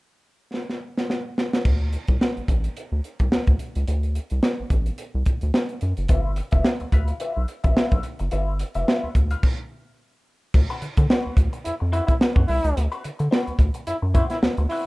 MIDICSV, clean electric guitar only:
0, 0, Header, 1, 3, 480
1, 0, Start_track
1, 0, Tempo, 555556
1, 1426, Time_signature, 4, 2, 24, 8
1, 12841, End_track
2, 0, Start_track
2, 0, Title_t, "Clean electric guitar"
2, 0, Program_c, 0, 27
2, 5264, Note_on_c, 0, 65, 71
2, 5271, Note_on_c, 0, 71, 78
2, 5274, Note_on_c, 0, 76, 74
2, 5446, Note_off_c, 0, 65, 0
2, 5450, Note_off_c, 0, 71, 0
2, 5451, Note_off_c, 0, 76, 0
2, 5634, Note_on_c, 0, 76, 61
2, 5640, Note_on_c, 0, 71, 59
2, 5645, Note_on_c, 0, 65, 50
2, 5760, Note_off_c, 0, 76, 0
2, 5763, Note_off_c, 0, 71, 0
2, 5766, Note_off_c, 0, 65, 0
2, 5984, Note_on_c, 0, 65, 67
2, 5990, Note_on_c, 0, 71, 78
2, 5993, Note_on_c, 0, 76, 74
2, 6114, Note_off_c, 0, 76, 0
2, 6124, Note_off_c, 0, 71, 0
2, 6166, Note_off_c, 0, 65, 0
2, 6222, Note_on_c, 0, 65, 70
2, 6231, Note_on_c, 0, 71, 87
2, 6233, Note_on_c, 0, 76, 86
2, 6405, Note_off_c, 0, 65, 0
2, 6409, Note_off_c, 0, 71, 0
2, 6410, Note_off_c, 0, 76, 0
2, 6598, Note_on_c, 0, 76, 64
2, 6604, Note_on_c, 0, 71, 48
2, 6610, Note_on_c, 0, 65, 51
2, 6693, Note_off_c, 0, 65, 0
2, 6699, Note_off_c, 0, 71, 0
2, 6703, Note_on_c, 0, 65, 78
2, 6704, Note_off_c, 0, 76, 0
2, 6709, Note_on_c, 0, 71, 66
2, 6715, Note_on_c, 0, 76, 75
2, 6930, Note_off_c, 0, 65, 0
2, 6933, Note_off_c, 0, 71, 0
2, 6935, Note_off_c, 0, 76, 0
2, 7187, Note_on_c, 0, 65, 68
2, 7194, Note_on_c, 0, 71, 82
2, 7199, Note_on_c, 0, 76, 74
2, 7367, Note_off_c, 0, 65, 0
2, 7370, Note_off_c, 0, 71, 0
2, 7373, Note_off_c, 0, 76, 0
2, 7562, Note_on_c, 0, 76, 58
2, 7566, Note_on_c, 0, 71, 54
2, 7573, Note_on_c, 0, 65, 52
2, 7655, Note_off_c, 0, 65, 0
2, 7661, Note_off_c, 0, 71, 0
2, 7665, Note_on_c, 0, 65, 84
2, 7667, Note_off_c, 0, 76, 0
2, 7671, Note_on_c, 0, 71, 82
2, 7677, Note_on_c, 0, 76, 81
2, 7846, Note_off_c, 0, 65, 0
2, 7848, Note_off_c, 0, 71, 0
2, 7851, Note_off_c, 0, 76, 0
2, 8042, Note_on_c, 0, 77, 53
2, 8052, Note_on_c, 0, 71, 52
2, 8058, Note_on_c, 0, 65, 51
2, 8163, Note_off_c, 0, 77, 0
2, 8167, Note_off_c, 0, 71, 0
2, 8171, Note_off_c, 0, 65, 0
2, 9246, Note_on_c, 0, 71, 86
2, 9251, Note_on_c, 0, 66, 86
2, 9256, Note_on_c, 0, 60, 68
2, 9341, Note_off_c, 0, 60, 0
2, 9345, Note_off_c, 0, 66, 0
2, 9347, Note_off_c, 0, 71, 0
2, 9591, Note_on_c, 0, 60, 74
2, 9597, Note_on_c, 0, 66, 73
2, 9601, Note_on_c, 0, 71, 80
2, 9810, Note_off_c, 0, 60, 0
2, 9814, Note_off_c, 0, 66, 0
2, 9816, Note_off_c, 0, 71, 0
2, 10302, Note_on_c, 0, 60, 102
2, 10305, Note_on_c, 0, 66, 103
2, 10313, Note_on_c, 0, 71, 101
2, 10428, Note_off_c, 0, 71, 0
2, 10438, Note_off_c, 0, 66, 0
2, 10481, Note_off_c, 0, 60, 0
2, 10676, Note_on_c, 0, 71, 75
2, 10683, Note_on_c, 0, 66, 74
2, 10688, Note_on_c, 0, 60, 70
2, 10773, Note_off_c, 0, 60, 0
2, 10779, Note_off_c, 0, 66, 0
2, 10781, Note_off_c, 0, 71, 0
2, 11160, Note_on_c, 0, 71, 86
2, 11165, Note_on_c, 0, 66, 77
2, 11171, Note_on_c, 0, 60, 76
2, 11252, Note_off_c, 0, 60, 0
2, 11258, Note_off_c, 0, 66, 0
2, 11261, Note_off_c, 0, 71, 0
2, 11502, Note_on_c, 0, 60, 80
2, 11508, Note_on_c, 0, 66, 93
2, 11513, Note_on_c, 0, 71, 100
2, 11724, Note_off_c, 0, 60, 0
2, 11727, Note_off_c, 0, 66, 0
2, 11729, Note_off_c, 0, 71, 0
2, 12220, Note_on_c, 0, 60, 95
2, 12227, Note_on_c, 0, 66, 82
2, 12232, Note_on_c, 0, 72, 96
2, 12354, Note_off_c, 0, 72, 0
2, 12357, Note_off_c, 0, 66, 0
2, 12398, Note_off_c, 0, 60, 0
2, 12709, Note_on_c, 0, 60, 78
2, 12716, Note_on_c, 0, 66, 80
2, 12720, Note_on_c, 0, 71, 95
2, 12831, Note_off_c, 0, 71, 0
2, 12840, Note_off_c, 0, 66, 0
2, 12841, Note_off_c, 0, 60, 0
2, 12841, End_track
3, 0, Start_track
3, 0, Title_t, "Muted clean electric guitar strokes"
3, 5502, Note_on_c, 9, 29, 43
3, 5589, Note_off_c, 9, 29, 0
3, 5882, Note_on_c, 9, 29, 34
3, 5969, Note_off_c, 9, 29, 0
3, 6124, Note_on_c, 9, 29, 40
3, 6211, Note_off_c, 9, 29, 0
3, 6465, Note_on_c, 9, 29, 48
3, 6552, Note_off_c, 9, 29, 0
3, 6943, Note_on_c, 9, 29, 38
3, 7030, Note_off_c, 9, 29, 0
3, 7081, Note_on_c, 9, 29, 42
3, 7167, Note_off_c, 9, 29, 0
3, 7431, Note_on_c, 9, 29, 42
3, 7517, Note_off_c, 9, 29, 0
3, 7911, Note_on_c, 9, 29, 37
3, 7998, Note_off_c, 9, 29, 0
3, 9113, Note_on_c, 9, 29, 38
3, 9199, Note_off_c, 9, 29, 0
3, 9351, Note_on_c, 9, 29, 39
3, 9437, Note_off_c, 9, 29, 0
3, 9487, Note_on_c, 9, 29, 40
3, 9573, Note_off_c, 9, 29, 0
3, 9823, Note_on_c, 9, 29, 38
3, 9910, Note_off_c, 9, 29, 0
3, 9961, Note_on_c, 9, 29, 47
3, 10048, Note_off_c, 9, 29, 0
3, 10197, Note_on_c, 9, 29, 42
3, 10283, Note_off_c, 9, 29, 0
3, 10438, Note_on_c, 9, 29, 43
3, 10525, Note_off_c, 9, 29, 0
3, 10544, Note_on_c, 9, 29, 42
3, 10630, Note_off_c, 9, 29, 0
3, 10783, Note_on_c, 9, 29, 36
3, 10870, Note_off_c, 9, 29, 0
3, 10919, Note_on_c, 9, 29, 44
3, 11005, Note_off_c, 9, 29, 0
3, 11025, Note_on_c, 9, 29, 41
3, 11112, Note_off_c, 9, 29, 0
3, 11262, Note_on_c, 9, 29, 45
3, 11348, Note_off_c, 9, 29, 0
3, 11397, Note_on_c, 9, 29, 54
3, 11483, Note_off_c, 9, 29, 0
3, 11745, Note_on_c, 9, 29, 36
3, 11832, Note_off_c, 9, 29, 0
3, 11877, Note_on_c, 9, 29, 52
3, 11963, Note_off_c, 9, 29, 0
3, 12116, Note_on_c, 9, 29, 45
3, 12203, Note_off_c, 9, 29, 0
3, 12358, Note_on_c, 9, 29, 56
3, 12444, Note_off_c, 9, 29, 0
3, 12600, Note_on_c, 9, 29, 55
3, 12687, Note_off_c, 9, 29, 0
3, 12841, End_track
0, 0, End_of_file